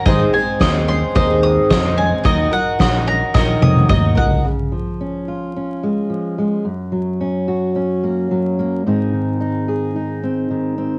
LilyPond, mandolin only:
\new Staff \with { instrumentName = "Mandolin" } { \time 4/4 \key des \major \tempo 4 = 109 ees''8 aes''8 ees''8 c'''8 ees''8 ees'''8 ees''8 aes''8 | ees''8 ges''8 ees''8 bes''8 ees''8 ees'''8 ees''8 ges''8 | r1 | r1 |
r1 | }